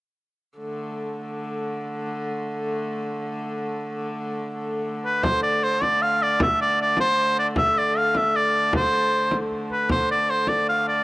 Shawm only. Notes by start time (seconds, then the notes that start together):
5.05 B4
5.23 C5
5.43 D5
5.63 C5
5.83 D5
6.02 F5
6.22 D5
6.42 E5
6.61 D5
6.82 D5
7.00 C5
7.39 D5
7.58 E5
7.78 D5
7.97 F5
8.17 E5
8.36 D5
8.76 C5
9.72 B4
9.91 C5
10.11 D5
10.30 C5
10.48 D5
10.69 F5
10.88 D5